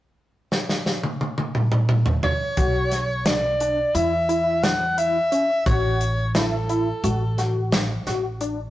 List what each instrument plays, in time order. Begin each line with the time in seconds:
0.52 snare
0.69 snare
0.86 snare
1.03 high tom
1.21 high tom
1.38 high tom
1.55 mid tom
1.72 mid tom
1.89 mid tom
2.06 floor tom
2.23 soprano saxophone C#5, floor tom
2.57 upright bass B1, synth arpeggio sound F#4, kick, closed hi-hat
2.92 snare, closed hi-hat
3.26 synth arpeggio sound D4, soprano saxophone D5, snare, closed hi-hat
3.60 synth arpeggio sound D4, closed hi-hat
3.95 upright bass E2, synth arpeggio sound E4, soprano saxophone E5, closed hi-hat
4.29 synth arpeggio sound E4, closed hi-hat
4.63 soprano saxophone F#5, snare, closed hi-hat
4.98 synth arpeggio sound E4, soprano saxophone E5, closed hi-hat
5.32 synth arpeggio sound C#4, closed hi-hat
5.66 upright bass A1, synth arpeggio sound F#4, soprano saxophone C#5, kick, closed hi-hat
6.01 closed hi-hat
6.35 synth arpeggio sound E4, soprano saxophone A4, snare, closed hi-hat
6.69 synth arpeggio sound E4, closed hi-hat
7.04 upright bass A1, synth arpeggio sound F#4, closed hi-hat
7.38 synth arpeggio sound F#4, snare, closed hi-hat
7.72 snare, closed hi-hat
8.07 upright bass A1, synth arpeggio sound F#4, snare, closed hi-hat
8.41 synth arpeggio sound D4, closed hi-hat